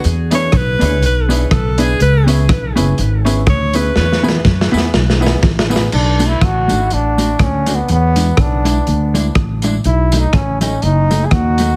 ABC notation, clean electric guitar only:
X:1
M:4/4
L:1/16
Q:"Swing" 1/4=122
K:Bdor
V:1 name="Clean electric guitar"
z2 [B,DG] z3 [B,DG] z3 [B,DG] z3 [B,DG] z | z2 [B,EG] z3 [B,EG] z3 [B,EG] z3 [B,EG] z | z2 [B,EG] z3 [B,EG] z3 [B,EG] z3 [B,EG] z | z2 [A,DF] z3 [A,DF] z3 [A,DF] z3 [A,DF] z |
z2 [G,DE] z3 [G,DE] z3 [G,DE] z3 [G,DE] z | z2 [F,A,^D] z3 [F,A,D] z3 [F,A,D] z3 [F,A,D] z |]